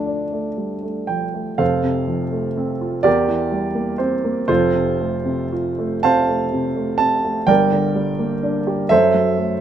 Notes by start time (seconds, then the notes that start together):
Already playing: D2 F3 A3 D4
0.07 D4
0.32 A3
0.57 G3
0.83 A3
1.07 F3 G5
1.34 A3
1.58 F1 F2 A4 C5 F5
1.84 C3
2.08 F3
2.32 A3
2.57 C4
2.81 F4
3.03 E2 G4 A#4 D5
3.28 E3
3.52 G3
3.75 A#3
3.98 C4 C5
4.24 A#3
4.48 F1 F2 F4 A4 C5
4.74 C3
5.00 A3
5.25 C3
5.53 F4
5.79 A3
6.03 C3 C5 F5 A5
6.28 A3
6.53 C3
6.76 A3
6.98 C3 A5
7.24 A3
7.47 G1 G2 A#4 D5 G5
7.72 D3
7.95 G3
8.19 A#3
8.43 D4
8.67 G4
8.89 F#2 A4 C5 E5
9.14 F#3
9.37 A3